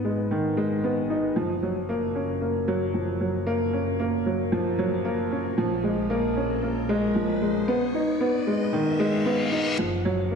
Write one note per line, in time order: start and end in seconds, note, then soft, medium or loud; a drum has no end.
0.00 1.34 G#1 medium
0.00 0.84 B3 medium
0.00 1.10 D#4 medium
0.05 0.30 G#3 medium
0.31 0.46 D#3 medium
0.57 0.72 G#3 medium
0.84 1.09 B3 medium
1.10 1.35 D#4 medium
1.36 5.55 F#1 medium
1.36 1.51 F3 medium
1.36 riser medium
1.63 1.88 F#3 medium
1.89 2.14 A#3 medium
2.15 2.40 C#4 medium
2.42 2.67 A#3 medium
2.68 2.83 F#3 loud
2.94 3.19 F3 medium
3.20 3.46 F#3 medium
3.47 3.62 A#3 loud
3.73 3.98 C#4 medium
4.00 4.25 A#3 loud
4.26 4.51 F#3 medium
4.52 4.67 F3 loud
4.79 4.94 F#3 loud
5.05 5.30 A#3 loud
5.31 5.56 C#4 medium
5.57 7.65 A#1 medium
5.57 5.73 F3 loud
5.84 6.09 G#3 medium
6.10 6.35 A#3 loud
6.36 6.61 C#4 medium
6.63 6.88 A#3 medium
6.89 7.04 G#3 loud
7.16 7.41 F3 medium
7.42 7.67 G#3 medium
7.68 7.83 B3 loud
7.94 8.19 D#4 medium
8.21 8.46 B3 loud
8.47 8.72 G#3 medium
8.73 8.88 D#3 loud
8.73 reverse cymbal medium
9.00 9.15 G#3 loud
9.26 9.51 B3 loud
9.52 9.77 D#4 medium
9.78 10.35 F#1 medium
9.78 10.04 F3 medium
10.05 10.20 F#3 loud
10.31 10.35 A#3 medium